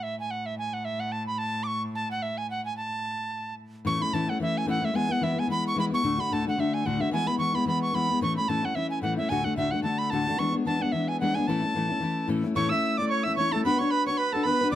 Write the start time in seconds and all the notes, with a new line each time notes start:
Already playing: A2
0.03 E5
0.20 G#5
0.31 F#5
0.46 E5
0.58 G#5
0.73 F#5
0.85 E5
1.00 F#5
1.12 A5
1.27 B5
1.38 A5
1.63 C#6 D6
1.95 A5
2.11 F#5
2.22 E5
2.38 G#5
2.50 F#5
2.65 G#5
2.77 A5
3.85 A2 E3 A3 C#4 E4 C#6
4.00 A3 C#4 E4 B5
4.12 A2 E3 A3 C#4 E4 A5
4.27 A3 C#4 E4 F#5
4.40 E3 A3 C#4 E4 E5
4.58 G#5
4.65 A2 E3 A3 C#4 E4 F#5
4.81 A3 C#4 E4 E5
4.93 E3 G#3 B3 E4 G#5
5.08 G#3 B3 E4 F#5
5.21 E3 G#3 B3 E4 E5
5.35 G#3 B3 E4
5.39 G#5
5.47 E3 G#3 B3 E4 B5
5.67 C#6
5.76 E3 G#3 B3 E4 B5
5.90 G#3 B3 E4 C#6
6.03 D2 A2 D3 A3 D4 F#4
6.18 D3 A3 D4 F#4 B5
6.31 D2 A2 D3 A3 D4 F#4 A5
6.45 D3 A3 D4 F#4 F#5
6.58 D3 A3 D4 F#4 E5
6.74 G#5
6.85 D2 A2 D3 A3 D4 F#4 F#5
7.00 D3 A3 D4 F#4 E5
7.11 E3 G#3 B3 E4 G#5
7.27 G#3 B3 E4 B5
7.38 E3 G#3 B3 E4 C#6
7.53 G#3 B3 E4 B5
7.66 E3 G#3 B3 E4 B5
7.82 C#6
7.93 E3 G#3 B3 E4 B5
8.09 G#3 B3 E4
8.21 A2 E3 A3 C#4 E4 C#6
8.36 A3 C#4 E4 B5
8.48 A2 E3 A3 C#4 E4 A5
8.63 A3 C#4 E4 F#5
8.74 E3 A3 C#4 E4 E5
8.90 G#5
9.02 A2 E3 A3 C#4 E4 F#5
9.17 A3 C#4 E4 E5
9.29 D2 A2 D3 A3 D4 F#4 G#5
9.44 D3 A3 D4 F#4 F#5
9.56 D2 A2 D3 A3 D4 F#4 E5
9.71 A3 D4 F#4 F#5
9.75 D3
9.83 D3 A3 D4 F#4 A5
9.98 B5
10.10 D2 A2 D3 A3 D4 A5
10.14 F#4
10.27 D3 A3 D4 F#4
10.38 E3 G#3 B3 D4 C#6
10.52 G#3 B3 D4
10.65 E3 G#3 B3 D4 A5
10.80 B3 D4 F#5
10.84 G#3
10.92 E3 G#3 B3 E5
10.96 D4
11.08 G#5
11.20 E3 G#3 B3 D4 F#5
11.35 B3 D4 G#5
11.39 G#3
11.47 A2 E3 A3 C#4 E4 A5
11.62 A3 C#4 E4
11.75 A2 E3 A3 C#4 E4
11.89 A3 C#4 E4
12.00 E3 A3 C#4 E4
12.28 A2 E3 A3 C#4 E4
12.44 A3 C#4 E4
12.55 A2 E3 A3 C#4 E4 C#5 C#6
12.69 C#4 E4 E5 E6
12.74 A3
12.97 C#4 E4 D5 D6
13.02 A3
13.08 C#5 C#6
13.23 E4 E5 E6
13.28 A3 C#4
13.36 E3 A3 C#4 C#5 C#6
13.41 E4
13.52 A3 C#4 E4 A4 A5
13.64 B3 D4 F#4 B4 B5
13.78 D4 F#4 B4 C#5 C#6
13.90 B4 B5
14.06 D4 F#4 B4 C#5 C#6
14.17 B4 B5
14.33 D4 F#4 A4 B4 A5
14.44 B3 D4 B4 B5
14.48 F#4 B4
14.61 D4 F#4 B4
14.71 D2 A2 D5 D6